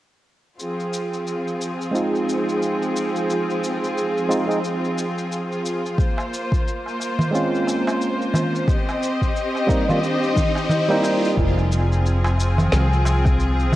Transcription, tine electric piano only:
1.91 G#3 C4 D#4
1.96 F4
4.29 G#3 C4 D#4 F4
4.48 G#3 C4 D#4 G#4
7.31 G#3 C4 C#4
7.35 F4
9.67 G3 A#3 C4 D#4
9.88 G3 A#3 C4 F4
10.88 G3 A#3 C4 D#4

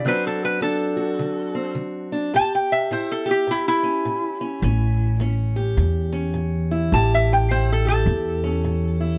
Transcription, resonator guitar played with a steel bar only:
0.08 B4
0.27 A4
0.45 B4
0.62 A4
2.36 A5
2.55 G5
2.72 E5
2.92 C5
3.12 A4
3.31 G4
3.51 E4
3.68 E4
6.94 A5
7.14 E5
7.33 G5
7.51 C5
7.72 A4
7.88 A4

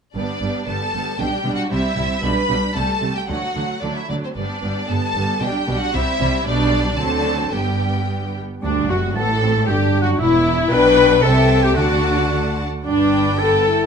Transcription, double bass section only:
0.15 G1
0.41 G1
0.68 G1
0.94 G1
1.20 B1
1.46 B1
1.72 C2
1.97 C2
2.23 B1
2.49 B1
2.75 C2
3.01 C2
3.28 D2
3.55 D2
3.82 D2
4.09 D2
4.36 G1
4.62 G1
4.89 G1
5.15 G1
5.41 B1
5.68 B1
5.94 C2
6.20 C2
6.45 B1
6.98 D2
7.53 G1
8.63 D2
8.89 F#1
9.16 A1
9.68 G1
10.20 E1
10.72 B1
11.23 C2
11.77 D2
12.86 G1

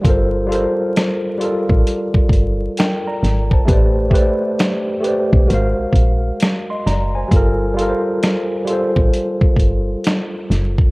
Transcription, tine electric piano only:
0.01 G3 F4
0.06 A4 A#4 C5
0.47 G3 F4 A4
0.53 A#4 C5
1.38 G3 F4
1.42 A4 A#4 D5
2.79 A#4 G5
3.07 D5 A#5
3.53 C5 A5
3.65 A3 G4 B4
3.71 C5 D5
4.10 A3 G4
4.14 B4 C5 D5
5.01 A3 G4 B4
5.07 C5 D5
5.46 G#3 F#4 A#4
5.52 C5 F5
6.70 D#5 C6
6.87 D5 A#5
7.15 C5 G#5
7.28 G3 F4
7.33 A4 A#4
7.74 G3 F4
7.79 A4 A#4
7.89 C5
8.65 G3 F4
8.70 A4 C5

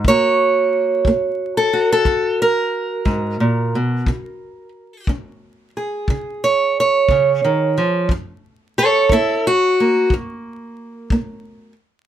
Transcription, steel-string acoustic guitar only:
0.08 F#2 A#3 F#4 C#5
1.07 A#3
1.57 A4
1.73 F#4
1.92 A4
2.06 F#2
2.42 A#4
3.05 G#2
3.40 A#2
3.75 B2
4.08 C#3
5.09 C#4
5.77 G#4
6.10 C#3
6.44 C#5
6.80 C#5
7.11 C#3
7.44 D#3
7.78 F3
8.11 F#2
8.78 A4 C#5
9.12 A#3 E4 A4
9.47 F#4
9.80 A#3
10.14 F#2
11.12 A#3

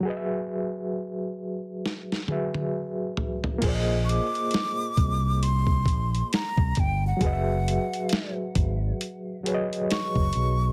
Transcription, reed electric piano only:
0.00 F#3 F#4
0.05 G#4 B4
0.10 D#5
0.17 E5
2.27 F#3 F#4 G#4 B4
2.32 E5
3.58 A#3 F4
3.64 G#4 C5
3.68 D5
3.75 D#5
7.17 F#3 F#4
7.22 G#4 B4
7.26 D#5
7.33 E5
9.43 F#3 F#4 G#4 B4
9.48 C#5
9.54 D#5

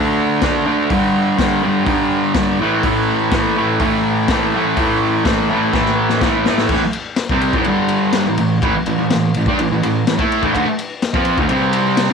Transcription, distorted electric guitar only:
Already playing: D3 A3 D4
0.43 D3 A3 D4
0.66 D3 A3 D4
0.90 G2 D3 G3
1.38 G2 D3 G3
1.63 G2 D3 G3
1.85 G2 D3 G3
2.35 G2 D3 G3
2.59 A2 E3 A3
2.83 A2 E3 A3
3.33 A2 E3 A3
3.56 A2 E3 A3
3.80 A2 E3 A3
4.31 A2 E3 A3
4.56 A2 E3 A3
4.77 A2 E3 A3
5.24 A2 E3 A3
5.50 A2 E3 A3
5.74 A2 E3 A3
6.22 A2 E3 A3
6.46 A2 E3 A3
6.71 A2 E3
6.84 muted distorted electric guitar stroke
7.31 C3 G3 C4
7.55 A2 E3
7.66 G2 D3 G3
8.27 A2 E3
8.38 A2 E3
8.63 A2 E3
8.75 muted distorted electric guitar stroke
8.87 A2 E3
8.98 A2 E3
9.13 A2 E3
9.37 A2 E3
9.48 G3 D4
9.59 A2 E3
9.72 A2 E3
9.83 A2 E3
10.08 A2 E3
10.18 A3 E4 A4
10.41 A2 E3
10.54 D3 A3
10.66 muted distorted electric guitar stroke
11.14 F3 C4 F4
11.39 D3 A3
11.49 C3 G3 C4

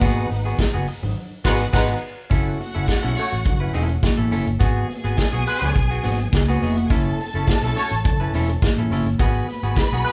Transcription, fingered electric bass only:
0.02 G#1
0.30 G#1
0.74 F#1
1.03 G#1
1.45 G#1
1.74 G#1
2.31 F#1
2.76 F#1
3.04 B1
3.32 A1
3.46 F#1
3.74 E1
4.18 A1
4.31 F#1
4.47 G1
4.61 G#1
5.04 G#1
5.33 B1
5.61 C#2
5.76 B1
6.04 G#1
6.33 C#2
6.62 F1
6.91 F#1
7.34 F#1
7.62 B1
7.91 A1
8.33 E1
8.77 A1
8.90 F#1
9.05 G1
9.19 G#1
9.63 G#1
9.92 B1

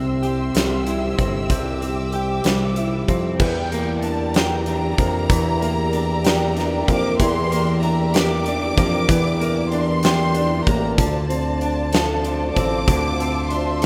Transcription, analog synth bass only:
Already playing: C2
0.56 C2
1.19 G1
1.50 C2
2.45 C2
3.09 F2
3.40 E2
4.98 F2
5.30 E2
6.88 F2
7.20 E2
8.78 F2
9.09 E2
10.67 A1
10.98 D2
12.57 A1
12.88 D2

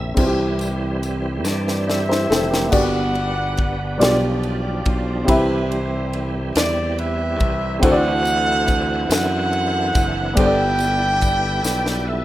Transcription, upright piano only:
Already playing: C3 C4 E4 G4
0.14 C3 C4 E4
0.20 F4
0.27 G4
1.87 D5
2.09 E4 C5
2.30 C4 A4
2.50 A#3 G4
2.70 G2 B3 D4 F#4 G4 D5
3.98 B2 G3 D4 F4 G4 D5
5.24 C3 C4 E4 G4
5.29 E5 B5
7.79 D3 C4 E4 F#4
7.84 A4 C5
7.92 D5
10.33 G2 B3 D4 G4
10.38 A4 C5
10.45 D5

